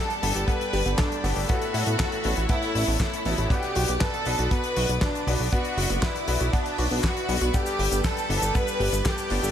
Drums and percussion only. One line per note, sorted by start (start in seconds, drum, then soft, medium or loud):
0.10 closed hi-hat medium
0.23 open hi-hat loud
0.35 closed hi-hat medium
0.48 kick loud
0.48 closed hi-hat medium
0.61 closed hi-hat medium
0.73 open hi-hat loud
0.86 closed hi-hat medium
0.98 kick loud
0.98 snare loud
0.98 clap loud
0.98 closed hi-hat medium
1.12 closed hi-hat medium
1.24 open hi-hat medium
1.36 open hi-hat medium
1.49 kick loud
1.49 closed hi-hat loud
1.62 closed hi-hat medium
1.74 open hi-hat loud
1.86 closed hi-hat medium
1.99 kick loud
1.99 snare loud
1.99 clap loud
1.99 closed hi-hat loud
2.12 closed hi-hat medium
2.24 open hi-hat loud
2.37 closed hi-hat medium
2.49 kick loud
2.49 closed hi-hat medium
2.62 closed hi-hat medium
2.75 open hi-hat loud
2.88 open hi-hat medium
3.00 kick loud
3.00 snare loud
3.00 clap loud
3.13 closed hi-hat medium
3.25 open hi-hat loud
3.38 closed hi-hat medium
3.50 kick loud
3.50 closed hi-hat medium
3.63 closed hi-hat soft
3.75 open hi-hat loud
3.88 closed hi-hat medium
4.01 kick loud
4.01 snare loud
4.01 clap loud
4.01 closed hi-hat medium
4.14 closed hi-hat soft
4.25 open hi-hat loud
4.39 closed hi-hat medium
4.51 kick loud
4.51 closed hi-hat loud
4.64 closed hi-hat medium
4.76 open hi-hat loud
4.90 closed hi-hat medium
5.01 kick loud
5.01 snare loud
5.01 clap loud
5.01 closed hi-hat medium
5.15 closed hi-hat medium
5.28 open hi-hat loud
5.40 open hi-hat medium
5.53 kick loud
5.53 closed hi-hat medium
5.65 closed hi-hat soft
5.78 open hi-hat loud
5.90 closed hi-hat medium
6.02 kick loud
6.02 snare loud
6.02 clap loud
6.02 closed hi-hat medium
6.16 closed hi-hat medium
6.28 open hi-hat loud
6.41 closed hi-hat medium
6.53 kick loud
6.53 closed hi-hat medium
6.66 closed hi-hat medium
6.78 open hi-hat medium
6.91 open hi-hat medium
7.04 kick loud
7.04 snare loud
7.04 clap loud
7.17 closed hi-hat soft
7.29 open hi-hat loud
7.42 closed hi-hat medium
7.54 kick loud
7.54 closed hi-hat medium
7.54 cabasa medium
7.66 closed hi-hat soft
7.66 cabasa medium
7.79 open hi-hat loud
7.92 closed hi-hat medium
7.92 cabasa medium
8.04 kick loud
8.04 snare loud
8.04 clap medium
8.04 closed hi-hat medium
8.04 cabasa medium
8.17 closed hi-hat medium
8.17 cabasa soft
8.30 open hi-hat loud
8.42 closed hi-hat medium
8.42 cabasa medium
8.55 kick loud
8.55 closed hi-hat medium
8.55 cabasa medium
8.67 closed hi-hat soft
8.67 cabasa medium
8.81 open hi-hat loud
8.92 closed hi-hat medium
8.92 cabasa medium
9.05 kick loud
9.05 snare loud
9.05 clap loud
9.05 closed hi-hat medium
9.05 cabasa medium
9.18 closed hi-hat medium
9.18 cabasa medium
9.30 open hi-hat loud
9.43 open hi-hat medium
9.43 cabasa medium